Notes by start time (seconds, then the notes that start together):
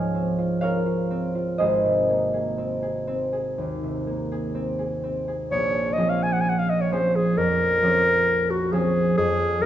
Already playing: C#2 G#2 F3 C4 F4 G#4 A#4 C5 C#5 D#5 F5 F#5 G#5 A#5
0.15 C4
0.39 F4
0.61 C4 F4 A#4 C#5 F5
0.86 F4
1.10 C4
1.35 F4
1.58 G#1 G#4 C5 D#5
1.85 C3
2.10 A#3
2.34 G#4
2.58 C4
2.82 G#4
3.07 C4
3.33 G#4
3.58 D#2
3.83 C3
4.07 A#3
4.32 G#4
4.55 C4
4.79 G#4
5.04 C4
5.28 G#4
5.51 A#1 C#5
5.93 D#5
5.98 F3 C4 C#4 G#4
6.09 F5
6.23 G#5
6.33 F#5
6.41 G#5
6.49 F#5
6.59 F5
6.70 D#5
6.81 C#5
6.92 F3 C4 C#4 G#4 C5
7.15 G#4
7.37 F2 A#4
7.82 F3 C4 C#4 G#4
8.50 F#4
8.72 F3 C4 C#4 G#4
9.17 F2 G#4
9.61 F3 C4 A#4